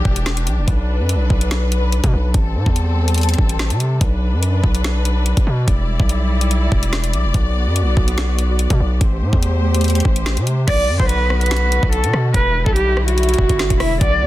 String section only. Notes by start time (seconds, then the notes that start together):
Already playing: E3 D4 G4
0.68 F#3 B4
2.34 G3 C4 A4
4.01 F#3 D4 B4
5.68 G3 E4 D5
7.34 B3 F#4
9.01 A3 G4 C5
10.68 D3 B3 F#4
12.34 D3 G3 E4
14.01 B3 F#4